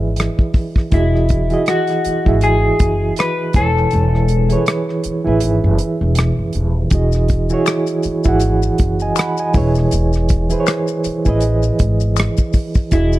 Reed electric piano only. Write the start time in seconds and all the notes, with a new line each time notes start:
Already playing: E3 E4 G#4 B4 D5 D#5 E5
0.91 E3 E4 F#4 G#4
0.95 D#5
1.50 E3 E4 F#4 G#4 D#5
2.25 E3 E4 F#4 G#4 E5
3.53 E3 E4 B4 G#5
3.58 C#5
4.49 E3 E4 G#4 B4 C#5
5.25 E3 E4 G#4 B4 E5
6.91 E3 E4 F#4 G#4
6.95 D#5
7.50 E3 E4 F#4 G#4 C#5
8.25 E3 E4 F#4 G#4 F#5
9.02 D#5 G#5
9.18 F#5 B5
9.40 D#5 G#5
9.53 E3 E4 G#4 B4
9.58 C#5
10.49 E3 E4 G#4 B4 C5
10.60 C#5
11.25 E3 E4 G#4 B4 D#5
12.91 E3 E4 F#4 G#4 D#5